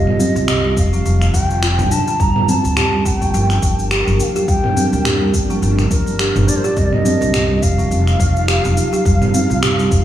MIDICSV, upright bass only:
0, 0, Header, 1, 2, 480
1, 0, Start_track
1, 0, Tempo, 571429
1, 1846, Time_signature, 4, 2, 24, 8
1, 8438, End_track
2, 0, Start_track
2, 0, Title_t, "Upright bass"
2, 0, Program_c, 0, 32
2, 300, Note_on_c, 0, 36, 89
2, 614, Note_off_c, 0, 36, 0
2, 645, Note_on_c, 0, 29, 82
2, 847, Note_off_c, 0, 29, 0
2, 887, Note_on_c, 0, 29, 88
2, 1088, Note_off_c, 0, 29, 0
2, 1127, Note_on_c, 0, 29, 83
2, 1499, Note_on_c, 0, 36, 92
2, 1511, Note_off_c, 0, 29, 0
2, 1585, Note_off_c, 0, 36, 0
2, 1846, Note_on_c, 0, 31, 94
2, 1957, Note_off_c, 0, 31, 0
2, 2221, Note_on_c, 0, 38, 89
2, 2534, Note_off_c, 0, 38, 0
2, 2566, Note_on_c, 0, 31, 92
2, 2767, Note_off_c, 0, 31, 0
2, 2805, Note_on_c, 0, 31, 88
2, 3007, Note_off_c, 0, 31, 0
2, 3046, Note_on_c, 0, 31, 84
2, 3382, Note_off_c, 0, 31, 0
2, 3422, Note_on_c, 0, 31, 87
2, 3507, Note_off_c, 0, 31, 0
2, 3765, Note_on_c, 0, 31, 90
2, 3876, Note_off_c, 0, 31, 0
2, 4137, Note_on_c, 0, 38, 83
2, 4453, Note_off_c, 0, 38, 0
2, 4485, Note_on_c, 0, 31, 86
2, 4687, Note_off_c, 0, 31, 0
2, 4723, Note_on_c, 0, 31, 92
2, 4926, Note_off_c, 0, 31, 0
2, 4964, Note_on_c, 0, 31, 83
2, 5300, Note_off_c, 0, 31, 0
2, 5339, Note_on_c, 0, 31, 87
2, 5425, Note_off_c, 0, 31, 0
2, 5684, Note_on_c, 0, 29, 98
2, 5796, Note_off_c, 0, 29, 0
2, 6060, Note_on_c, 0, 36, 95
2, 6374, Note_off_c, 0, 36, 0
2, 6405, Note_on_c, 0, 29, 92
2, 6607, Note_off_c, 0, 29, 0
2, 6644, Note_on_c, 0, 29, 94
2, 6847, Note_off_c, 0, 29, 0
2, 6885, Note_on_c, 0, 29, 87
2, 7221, Note_off_c, 0, 29, 0
2, 7264, Note_on_c, 0, 29, 97
2, 7348, Note_off_c, 0, 29, 0
2, 7606, Note_on_c, 0, 29, 97
2, 7717, Note_off_c, 0, 29, 0
2, 7981, Note_on_c, 0, 36, 87
2, 8295, Note_off_c, 0, 36, 0
2, 8326, Note_on_c, 0, 29, 93
2, 8438, Note_off_c, 0, 29, 0
2, 8438, End_track
0, 0, End_of_file